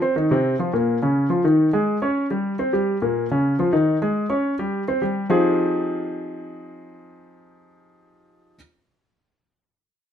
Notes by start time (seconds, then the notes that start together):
0.02 C4 C5
0.16 D#3 D#4
0.31 C3 C4
0.59 F3 F4
0.73 A#2 A#3
1.02 C#3 C#4
1.30 F3 F4
1.44 D#3 D#4
1.73 G#3 G#4
2.02 C#4 C#5
2.31 G3 G4
2.59 C4 C5
2.73 G3 G4
3.02 A#2 A#3
3.31 C#3 C#4
3.59 F3 F4
3.73 D#3 D#4
4.02 G#3 G#4
4.30 C#4 C#5
4.59 G3 G4
4.88 C4 C5
5.02 G3 G4
5.30 F3 C4 D#4 F4 G4 G#4